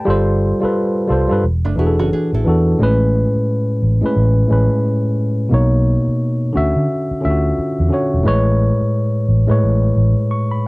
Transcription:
Already playing: G5
0.05 G1 G3 F4 A4
0.10 C5
0.60 G3 F4 A4, muted fingered electric bass stroke
0.65 B4
1.07 C2 G3 F4 A4
1.12 C5
1.28 G2 G3 F4 A4
1.33 B4
1.44 E1
1.65 F#1 A3 D4
1.75 E1 E3 B3 D4 E4 F#4
1.81 G#4
1.87 A4
1.99 F#1 C#4 F#4
2.13 D4 G#4, muted fingered electric bass stroke
2.33 A1 E4 A4
2.45 E2 E3 D4 F#4
2.49 A4
2.79 A1 A2 G#3 C#4
2.83 B4
3.36 muted fingered electric bass stroke
3.83 A1
4.01 A2 G#3 C#4
4.06 B4
4.16 A1
4.48 A1 A2 G#3 C#4
4.53 B4
5.49 B1 B2 A#3 D#4
5.54 C#5
6.08 muted fingered electric bass stroke
6.53 D2 D3 C#4 F#4
6.57 E5
6.76 D3
7.11 muted fingered electric bass stroke
7.20 D3 C#4 F4
7.25 D2 E5
7.30 F#4
7.58 muted fingered electric bass stroke
7.80 E2
7.89 D3 C#4 F#4
7.94 C#5
8.14 E1
8.23 A1 A2 G#3 B4
8.28 C#5
8.81 muted fingered electric bass stroke
9.29 A1
9.47 A2 G#3 B4
9.51 C#5
9.63 A1
9.97 A1
10.31 C#6
10.52 B5

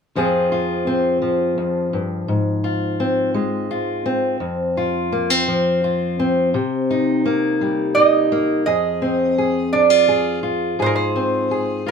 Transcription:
0.15 F2 F3 C4 F4 G#4
0.52 F4
0.87 C4
1.22 F3
1.58 F2
1.93 G2
2.28 G#2
2.64 F4
3.00 C4
3.34 G#3
3.71 F4
4.06 C4
4.40 F2
4.77 F4
5.12 A#3
5.30 C4
5.48 F3
5.84 F4
6.20 C4
6.54 C3
6.91 D#4
7.26 A#3
7.61 G3
7.95 D#4 D#5
8.32 A#3
8.66 F2 G#4 D#5
9.02 C4
9.38 G#4
9.73 D4 D5
9.90 F4
10.08 G#4
10.43 F4
10.79 G#2 G#4 C5
10.86 A#4
10.96 C5
11.16 C4
11.51 G#4
11.86 F4

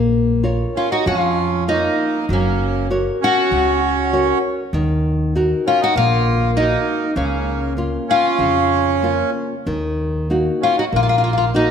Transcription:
Already playing: A#1 A#3
0.43 F4 A#4 C#5
0.75 C#4 F4
0.91 D#4 F#4
1.06 F2 F3 C#4 F4
1.68 A#3 D#4 F4 A#4 C#5
2.29 F#1 F#3 A#3 C#4
2.90 F#4 A#4 C#5
3.21 C#4 F#4
3.51 C#2 C#3
4.13 F#4 A#4 C#5
4.73 D#2 D#3
5.35 D#4 F#4 A#4
5.67 C#4 F4
5.81 D#4 F#4
5.95 A#1 A#3 F4
6.56 A#3 D#4 F#4 A#4
7.16 C#2 C#3 A#3 C#4
7.77 A#3 C#4 F4
8.09 C#4 F4
8.39 F2 C#3
9.02 A#3 C#4 F4
9.66 D#2 D#3
10.30 A#3 D#4 F#4
10.62 C#4 F4
10.78 D#4 F#4
10.92 A#1 A#3 F4
11.03 F4
11.09 F4
11.18 F4
11.24 F4
11.33 F4
11.38 F4
11.54 A#3 D#4 F#4

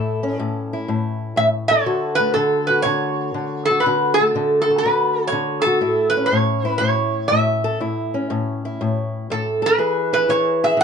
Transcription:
Already playing: A2 E4 A4 E5
0.23 C#4
0.36 A2 D5
0.73 E4
0.88 A2
1.36 A2 E5
1.68 A4 C#5
1.86 D3 F#4
2.15 B4
2.20 A3
2.34 D3 A4
2.67 F#4 B4
2.82 D3 C#5
3.34 D3
3.65 A4
3.70 F#4
3.80 B4
3.86 D3 F#4
4.14 A4
4.20 A3
4.35 D3
4.62 A4
4.70 F#4
4.78 B4
4.86 D3
5.27 C#5
5.32 D3
5.62 A4
5.66 F#4
5.81 A2 E4
6.10 B4
6.17 C#4
6.26 C#5
6.32 A2
6.65 E4
6.78 A2 C#5
7.28 A2 E5
7.64 A4
7.80 A2 E4
8.14 C#4
8.30 A2
8.65 E4
8.81 A2
9.30 A2 A4
9.62 A4 B4
9.78 E3 G#4
10.13 E4 B4
10.29 E3 C#5
10.64 G#4 E5
10.77 E3 F#5

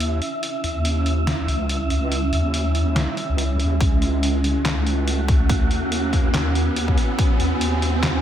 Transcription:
Already playing: D#2 C#4 E4 E5, riser
0.00 closed hi-hat
0.22 closed hi-hat
0.43 closed hi-hat
0.64 D#2, closed hi-hat
0.85 closed hi-hat
1.06 closed hi-hat
1.27 snare, closed hi-hat
1.48 C#2, closed hi-hat
1.69 closed hi-hat
1.90 C#2, closed hi-hat
2.12 closed hi-hat
2.33 D#2, closed hi-hat
2.54 closed hi-hat
2.75 closed hi-hat
2.96 C#2, snare, closed hi-hat
3.17 closed hi-hat
3.29 C#2
3.38 closed hi-hat
3.60 D#2, closed hi-hat
3.80 C#2 F#4, kick, closed hi-hat
4.02 closed hi-hat
4.23 closed hi-hat
4.44 closed hi-hat
4.65 snare, clap, closed hi-hat
4.87 closed hi-hat
5.08 closed hi-hat
5.28 kick, closed hi-hat
5.50 kick, closed hi-hat
5.71 D#2, closed hi-hat
5.92 closed hi-hat
6.13 kick, closed hi-hat
6.34 snare, clap, closed hi-hat
6.55 closed hi-hat
6.76 closed hi-hat
6.88 kick
6.98 closed hi-hat
7.19 kick, closed hi-hat
7.40 D#2, closed hi-hat
7.61 closed hi-hat
7.82 closed hi-hat
8.03 snare, clap, closed hi-hat

